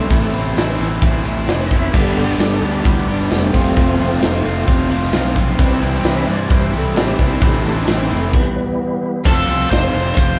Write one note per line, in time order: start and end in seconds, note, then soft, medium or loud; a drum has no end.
0.00 0.10 G3 loud
0.00 0.36 A3 medium
0.00 0.10 C4 medium
0.00 0.11 E4 medium
0.10 0.33 A1 loud
0.10 0.32 A2 loud
0.10 0.32 E3 loud
0.10 0.33 A3 loud
0.10 0.33 C4 loud
0.10 0.33 E4 loud
0.10 kick loud
0.10 closed hi-hat loud
0.10 tambourine soft
0.23 closed hi-hat medium
0.33 0.55 A1 loud
0.33 0.55 A2 medium
0.33 0.56 E3 medium
0.33 0.57 A3 medium
0.33 0.57 C4 medium
0.33 0.57 E4 medium
0.33 closed hi-hat medium
0.33 tambourine medium
0.37 0.66 C3 medium
0.37 0.66 A3 medium
0.46 closed hi-hat soft
0.56 0.79 A1 loud
0.56 0.77 A2 medium
0.56 0.78 E3 loud
0.56 0.78 A3 loud
0.56 0.78 C4 loud
0.56 0.79 E4 loud
0.56 snare loud
0.56 closed hi-hat medium
0.56 tambourine medium
0.78 1.01 A1 medium
0.78 1.01 A2 medium
0.78 1.02 E3 medium
0.78 1.01 A3 medium
0.78 1.02 C4 medium
0.78 1.03 E4 medium
0.78 closed hi-hat medium
0.78 tambourine soft
1.02 1.24 A1 medium
1.02 1.23 A2 medium
1.02 1.24 E3 medium
1.02 1.24 A3 medium
1.02 1.24 C4 medium
1.02 1.24 E4 medium
1.02 kick loud
1.02 closed hi-hat loud
1.02 tambourine medium
1.24 1.47 A1 medium
1.24 1.47 A2 medium
1.24 1.47 E3 medium
1.24 1.47 A3 medium
1.24 1.48 C4 medium
1.24 1.48 E4 medium
1.24 closed hi-hat medium
1.48 1.92 F1 medium
1.48 1.70 A2 medium
1.48 1.71 E3 medium
1.48 1.71 A3 loud
1.48 1.71 C4 loud
1.48 1.72 E4 loud
1.48 snare loud
1.48 closed hi-hat loud
1.48 tambourine loud
1.59 closed hi-hat soft
1.67 1.70 D#5 medium
1.67 kick medium
1.67 tambourine medium
1.71 1.93 A2 medium
1.71 1.93 E3 medium
1.71 1.93 A3 medium
1.71 1.93 C4 medium
1.71 1.94 E4 loud
1.71 2.16 E5 loud
1.71 closed hi-hat medium
1.94 2.16 G1 medium
1.94 2.16 G2 medium
1.94 2.17 D3 loud
1.94 2.24 D3 medium
1.94 2.24 G3 medium
1.94 2.18 G3 medium
1.94 2.25 B3 medium
1.94 2.17 B3 loud
1.94 2.18 D4 loud
1.94 2.18 G4 loud
1.94 kick loud
1.94 crash loud
2.16 2.38 G1 medium
2.16 2.38 G2 medium
2.16 2.39 D3 medium
2.16 2.40 G3 medium
2.16 2.40 B3 medium
2.16 2.40 D4 medium
2.16 2.40 G4 medium
2.16 2.40 D5 loud
2.16 closed hi-hat medium
2.16 tambourine medium
2.29 snare soft
2.38 2.61 G1 loud
2.38 2.61 G2 medium
2.38 2.62 D3 loud
2.38 2.62 G3 loud
2.38 2.63 B3 loud
2.38 2.62 D4 loud
2.38 2.63 G4 loud
2.38 2.63 A4 loud
2.38 snare loud
2.38 closed hi-hat loud
2.38 tambourine loud
2.51 closed hi-hat soft
2.60 2.84 D2 medium
2.60 2.84 G2 medium
2.60 2.84 D3 medium
2.60 2.84 G3 medium
2.60 2.85 D4 loud
2.60 2.84 G4 medium
2.60 closed hi-hat medium
2.60 tambourine soft
2.64 2.85 B3 medium
2.64 2.86 G4 medium
2.72 closed hi-hat soft
2.85 3.07 D2 medium
2.85 3.05 G2 loud
2.85 3.06 D3 loud
2.85 3.07 G3 loud
2.85 3.07 B3 medium
2.85 3.07 D4 medium
2.85 3.08 E4 medium
2.85 3.07 G4 medium
2.85 kick loud
2.85 closed hi-hat loud
2.85 tambourine medium
3.07 3.30 G1 medium
3.07 3.29 G2 medium
3.07 3.30 D3 medium
3.07 3.31 G3 medium
3.07 3.30 B3 medium
3.07 3.31 D4 medium
3.07 3.31 G4 medium
3.07 closed hi-hat medium
3.07 tambourine medium
3.20 snare soft
3.30 3.54 F1 medium
3.30 3.52 G2 medium
3.30 3.53 D3 loud
3.30 3.53 G3 medium
3.30 3.52 A3 medium
3.30 3.53 B3 loud
3.30 3.53 D4 medium
3.30 3.54 G4 loud
3.30 snare loud
3.30 closed hi-hat loud
3.30 tambourine loud
3.43 closed hi-hat soft
3.53 3.76 F1 medium
3.53 3.74 F2 loud
3.53 3.74 C3 loud
3.53 4.19 F3 medium
3.53 3.75 F3 loud
3.53 3.76 G3 medium
3.53 3.76 A3 soft
3.53 3.76 A3 loud
3.53 4.19 C4 medium
3.53 3.77 C4 loud
3.53 3.76 F4 loud
3.53 kick medium
3.53 closed hi-hat medium
3.53 tambourine medium
3.75 3.99 F1 loud
3.75 3.96 F2 medium
3.75 3.96 C3 loud
3.75 3.97 F3 loud
3.75 3.98 A3 loud
3.75 4.66 A3 loud
3.75 3.99 C4 loud
3.75 3.98 F4 loud
3.75 kick loud
3.75 closed hi-hat loud
3.88 closed hi-hat medium
3.97 4.22 F1 loud
3.97 4.20 F2 medium
3.97 4.20 C3 medium
3.97 4.21 F3 medium
3.97 4.21 A3 medium
3.97 4.22 C4 medium
3.97 4.22 F4 medium
3.97 closed hi-hat medium
3.97 tambourine medium
4.12 snare soft
4.12 closed hi-hat medium
4.21 4.45 F1 medium
4.21 4.42 F2 medium
4.21 4.43 C3 medium
4.21 4.43 F3 loud
4.21 4.44 A3 loud
4.21 4.44 C4 loud
4.21 4.45 F4 loud
4.21 snare loud
4.21 closed hi-hat loud
4.21 tambourine loud
4.43 4.67 F1 medium
4.43 4.65 F2 medium
4.43 4.66 C3 medium
4.43 4.65 F3 medium
4.43 4.66 A3 medium
4.43 4.67 C4 medium
4.43 4.66 F4 medium
4.43 closed hi-hat medium
4.43 tambourine soft
4.66 4.90 F1 medium
4.66 4.89 F2 medium
4.66 4.88 C3 medium
4.66 4.90 F3 medium
4.66 4.90 A3 loud
4.66 4.91 C4 loud
4.66 4.91 F4 medium
4.66 kick loud
4.66 closed hi-hat loud
4.66 tambourine medium
4.90 5.13 F1 medium
4.90 5.11 F2 medium
4.90 5.12 C3 medium
4.90 5.12 F3 medium
4.90 5.13 A3 medium
4.90 5.14 C4 medium
4.90 5.14 F4 loud
4.90 closed hi-hat medium
4.90 tambourine medium
5.03 snare soft
5.12 5.58 B1 medium
5.12 5.33 F2 loud
5.12 5.34 C3 medium
5.12 5.35 F3 medium
5.12 5.35 A3 loud
5.12 5.36 C4 loud
5.12 5.35 F4 loud
5.12 snare loud
5.12 closed hi-hat loud
5.12 tambourine loud
5.24 closed hi-hat soft
5.35 5.57 F2 loud
5.35 5.58 C3 loud
5.35 5.58 F3 medium
5.35 5.58 A3 loud
5.35 5.60 C4 medium
5.35 5.58 F4 medium
5.35 kick medium
5.35 closed hi-hat medium
5.35 tambourine medium
5.59 5.82 C2 loud
5.59 5.81 C3 loud
5.59 5.82 E3 loud
5.59 6.26 E3 medium
5.59 5.81 G3 loud
5.59 5.82 C4 loud
5.59 5.83 E4 loud
5.59 kick loud
5.59 closed hi-hat loud
5.63 6.27 G3 medium
5.63 6.27 C4 medium
5.82 6.04 C2 medium
5.82 6.04 C3 medium
5.82 6.05 E3 medium
5.82 6.04 G3 medium
5.82 6.05 C4 medium
5.82 6.06 E4 medium
5.82 closed hi-hat medium
5.82 tambourine medium
5.94 snare soft
6.04 6.26 C2 medium
6.04 6.24 C3 loud
6.04 6.26 E3 loud
6.04 6.25 G3 loud
6.04 6.25 C4 medium
6.04 6.27 E4 loud
6.04 6.28 E5 loud
6.04 snare loud
6.04 closed hi-hat loud
6.04 tambourine loud
6.16 closed hi-hat soft
6.26 6.49 G2 medium
6.26 6.48 C3 medium
6.26 6.48 E3 medium
6.26 6.49 G3 medium
6.26 6.49 C4 medium
6.26 6.49 E4 loud
6.26 closed hi-hat medium
6.26 tambourine soft
6.31 6.52 D5 medium
6.39 closed hi-hat soft
6.49 6.73 G2 medium
6.49 6.69 C3 loud
6.49 6.71 E3 loud
6.49 6.71 G3 loud
6.49 6.71 C4 loud
6.49 6.72 E4 loud
6.49 kick loud
6.49 closed hi-hat loud
6.49 tambourine medium
6.53 6.75 C5 loud
6.71 6.96 C2 medium
6.71 6.94 C3 medium
6.71 6.95 E3 medium
6.71 6.95 G3 medium
6.71 6.95 C4 medium
6.71 6.95 E4 loud
6.71 closed hi-hat medium
6.71 tambourine medium
6.78 6.98 A4 medium
6.95 7.18 A1 medium
6.95 7.17 C3 medium
6.95 7.18 E3 medium
6.95 7.18 G3 medium
6.95 7.19 C4 loud
6.95 7.19 E4 loud
6.95 7.20 G4 loud
6.95 snare loud
6.95 closed hi-hat loud
6.95 tambourine medium
7.08 closed hi-hat soft
7.18 7.41 C2 loud
7.18 7.40 C3 loud
7.18 7.41 E3 loud
7.18 7.41 G3 loud
7.18 7.41 C4 loud
7.18 7.41 E4 loud
7.18 kick medium
7.18 closed hi-hat medium
7.18 tambourine medium
7.23 7.44 E4 medium
7.41 7.64 A1 loud
7.41 7.64 A2 loud
7.41 7.74 C3 medium
7.41 7.65 E3 loud
7.41 7.65 A3 loud
7.41 7.74 A3 medium
7.41 7.66 C4 loud
7.41 7.66 E4 loud
7.41 kick loud
7.41 closed hi-hat loud
7.41 tambourine soft
7.45 7.66 D#4 loud
7.54 closed hi-hat medium
7.64 7.87 A1 loud
7.64 7.86 A2 medium
7.64 7.87 E3 medium
7.64 7.87 A3 medium
7.64 7.88 C4 medium
7.64 7.88 E4 loud
7.64 closed hi-hat medium
7.64 tambourine medium
7.68 7.89 D4 loud
7.75 snare soft
7.75 closed hi-hat soft
7.87 8.10 A1 medium
7.87 8.08 A2 loud
7.87 8.09 E3 medium
7.87 8.09 A3 loud
7.87 8.09 C4 loud
7.87 8.10 E4 loud
7.87 snare loud
7.87 closed hi-hat loud
7.87 tambourine loud
7.92 8.12 C4 loud
8.09 8.33 F1 medium
8.09 8.32 A2 medium
8.09 8.32 E3 medium
8.09 8.32 A3 medium
8.09 8.32 C4 medium
8.09 8.33 E4 loud
8.09 closed hi-hat medium
8.09 tambourine soft
8.14 8.35 A3 medium
8.33 9.23 E3 medium
8.33 8.58 G3 loud
8.33 9.23 B3 medium
8.33 kick loud
8.33 crash loud
8.56 8.58 F#3 medium
8.60 9.25 G3 loud
9.25 9.42 F1 loud
9.25 9.47 F2 medium
9.25 9.48 C3 loud
9.25 9.48 F3 loud
9.25 9.49 A3 loud
9.25 9.50 C4 loud
9.25 10.39 C4 medium
9.25 9.50 F4 loud
9.25 10.39 F4 medium
9.25 9.70 A4 medium
9.25 10.39 C5 medium
9.25 kick loud
9.25 crash loud
9.30 10.39 A4 medium
9.48 9.65 C2 medium
9.48 9.69 F2 medium
9.48 9.70 C3 medium
9.48 9.70 F3 medium
9.48 9.70 A3 medium
9.48 9.71 C4 medium
9.48 9.71 F4 medium
9.48 closed hi-hat medium
9.48 tambourine medium
9.60 tambourine medium
9.70 9.88 F1 medium
9.70 9.92 F2 medium
9.70 9.92 C3 medium
9.70 9.92 F3 medium
9.70 9.93 A3 medium
9.70 9.94 C4 medium
9.70 9.93 F4 medium
9.70 10.14 C5 loud
9.70 kick medium
9.70 snare loud
9.70 closed hi-hat medium
9.70 tambourine medium
9.93 10.11 F1 medium
9.93 10.16 F2 medium
9.93 10.16 C3 medium
9.93 10.17 F3 medium
9.93 10.18 A3 medium
9.93 10.17 C4 medium
9.93 10.17 F4 medium
9.93 closed hi-hat medium
9.93 tambourine medium
10.06 closed hi-hat soft
10.15 10.34 F1 medium
10.15 10.38 F2 medium
10.15 10.39 C3 medium
10.15 10.39 F3 medium
10.15 10.39 A3 medium
10.15 10.39 C4 medium
10.15 10.39 F4 medium
10.15 10.39 C5 medium
10.15 kick loud
10.15 closed hi-hat loud
10.15 tambourine soft
10.29 closed hi-hat soft